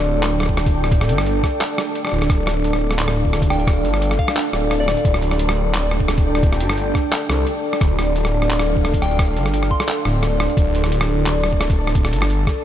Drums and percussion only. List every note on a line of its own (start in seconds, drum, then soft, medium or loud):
0.23 cross-stick medium
0.23 clap loud
0.23 closed hi-hat medium
0.40 cross-stick medium
0.43 cross-stick soft
0.46 kick medium
0.46 cross-stick soft
0.57 cross-stick medium
0.57 closed hi-hat medium
0.66 kick loud
0.66 open hi-hat medium
0.84 cross-stick medium
0.84 closed hi-hat soft
0.92 kick loud
0.92 closed hi-hat medium
1.01 cross-stick medium
1.01 closed hi-hat soft
1.09 open hi-hat medium
1.18 cross-stick medium
1.26 open hi-hat medium
1.43 kick medium
1.43 cross-stick medium
1.61 cross-stick medium
1.61 clap loud
1.61 closed hi-hat medium
1.78 cross-stick medium
1.95 closed hi-hat medium
2.05 cross-stick medium
2.07 cross-stick soft
2.09 cross-stick soft
2.12 cross-stick soft
2.14 cross-stick soft
2.17 cross-stick soft
2.19 cross-stick soft
2.22 cross-stick medium
2.22 closed hi-hat soft
2.30 kick loud
2.30 cross-stick medium
2.30 closed hi-hat medium
2.47 cross-stick medium
2.47 open hi-hat medium
2.64 open hi-hat medium
2.73 cross-stick medium
2.91 cross-stick medium
2.99 clap loud
2.99 closed hi-hat medium
3.08 cross-stick medium
3.25 kick medium
3.33 cross-stick medium
3.33 closed hi-hat medium
3.42 kick loud
3.42 open hi-hat medium
3.50 cross-stick medium
3.60 closed hi-hat soft
3.67 kick loud
3.67 cross-stick medium
3.67 closed hi-hat medium
3.85 open hi-hat medium
3.94 cross-stick medium
4.02 open hi-hat medium
4.11 cross-stick medium
4.19 kick medium
4.28 cross-stick medium
4.36 clap loud
4.36 closed hi-hat medium
4.53 cross-stick medium
4.71 cross-stick medium
4.71 closed hi-hat medium
4.88 cross-stick medium
4.97 closed hi-hat soft
5.05 kick loud
5.05 closed hi-hat medium
5.14 cross-stick medium
5.22 open hi-hat medium
5.31 cross-stick soft
5.39 open hi-hat medium
5.49 cross-stick medium
5.74 cross-stick medium
5.74 clap loud
5.74 closed hi-hat medium
5.91 cross-stick medium
6.00 kick medium
6.08 cross-stick medium
6.08 closed hi-hat medium
6.18 kick loud
6.18 open hi-hat medium
6.35 cross-stick medium
6.35 closed hi-hat soft
6.43 kick loud
6.43 closed hi-hat medium
6.53 cross-stick medium
6.53 closed hi-hat soft
6.60 open hi-hat medium
6.70 cross-stick medium
6.78 open hi-hat medium
6.95 kick medium
6.95 cross-stick medium
7.12 cross-stick medium
7.12 clap loud
7.12 closed hi-hat medium
7.30 cross-stick medium
7.47 closed hi-hat medium
7.73 cross-stick medium
7.81 kick loud
7.81 cross-stick medium
7.81 closed hi-hat medium
7.99 cross-stick medium
7.99 open hi-hat medium
8.16 open hi-hat medium
8.25 cross-stick medium
8.42 cross-stick medium
8.50 clap loud
8.50 closed hi-hat medium
8.59 cross-stick medium
8.76 kick medium
8.85 cross-stick medium
8.85 closed hi-hat medium
8.94 kick loud
8.94 open hi-hat medium
9.02 cross-stick soft
9.11 closed hi-hat soft
9.19 kick loud
9.19 cross-stick medium
9.19 closed hi-hat medium
9.37 open hi-hat medium
9.46 cross-stick medium
9.54 open hi-hat medium
9.63 cross-stick medium
9.71 kick medium
9.80 cross-stick medium
9.88 clap loud
9.88 closed hi-hat medium
10.05 cross-stick medium
10.23 cross-stick medium
10.23 closed hi-hat medium
10.40 cross-stick medium
10.50 closed hi-hat soft
10.57 kick loud
10.57 closed hi-hat medium
10.75 open hi-hat medium
10.84 cross-stick medium
10.92 open hi-hat medium
11.01 cross-stick medium
11.26 cross-stick medium
11.26 clap loud
11.26 closed hi-hat medium
11.44 cross-stick medium
11.53 kick medium
11.61 cross-stick medium
11.61 closed hi-hat medium
11.70 kick loud
11.70 open hi-hat medium
11.87 cross-stick medium
11.87 closed hi-hat soft
11.95 kick loud
11.95 closed hi-hat medium
12.05 cross-stick medium
12.05 closed hi-hat soft
12.13 open hi-hat medium
12.22 cross-stick medium
12.30 open hi-hat medium
12.47 kick medium
12.47 cross-stick medium